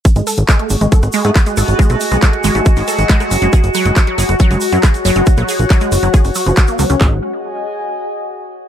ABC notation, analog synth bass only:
X:1
M:4/4
L:1/16
Q:1/4=138
K:F#dor
V:1 name="Analog synth bass" clef=bass
z G,,, z G,,, z2 G,,, G,,, z G,,, z G,, z2 G,,, G,,, | z B,,, z B,,, z2 G,,, G,,, z G,,, z G,,, z2 F,,, F,,, | z F,,, z F,,, z2 F,,, F,,, z F,,, z F,, z2 F,,, F,,, | z ^A,,, z A,,, z2 F,,, F,,, z F,,, z F,,, z2 C,, C,, |
G,,,2 z12 z2 |]